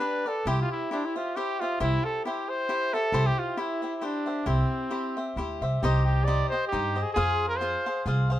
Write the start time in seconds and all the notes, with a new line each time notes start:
Already playing: B4
0.00 D4 G4 B4 D5
0.26 G4 A4 B4 D5
0.45 C2 E4 G4 C5 E5
0.61 F4
0.72 E4
0.91 D4 E4 G4 C5 E5
1.05 E4
1.16 F4 G4 C5 E5
1.36 E4 G4 C5 E5
1.60 F4 G4 C5 E5
1.80 C2 E4 G4 C5 E5
2.04 A4
2.25 E4 G4 C5 E5
2.49 C5
2.69 E4 G4 C5 E5
2.93 G4 A4 C5 E5
3.12 C2 E4 G4 C5 E5
3.26 G4
3.39 F4
3.57 E4 G4 C5 E5
3.82 G4 C5 E5
3.96 E4
4.01 D4 E4 G4 C5 E5
4.26 G4 C5 E5
4.46 C2 C4 E4 G4 C5 E5
4.90 E4 G4 C5 E5
5.17 G4 C5 E5
5.36 D2 E4 G4 C5 E5
5.61 C2 G4 C5 E5
5.82 C2 D#4 G4 C5 D#5
6.05 G4
6.25 D#4 G4 C5 D5 D#5
6.49 C5 D#5
6.54 G4
6.67 G4
6.72 G2 D#4 G4 C5 D#5
6.95 G4 C5 D#5
7.03 G#4
7.13 F2 F4 G#4 C5 F5
7.48 A#4
7.57 F4 C5
7.61 G#4 C5 F5
7.86 G#4 C5 F5
8.06 C2 F4 G#4 C5 F5
8.30 G#4 C5 F5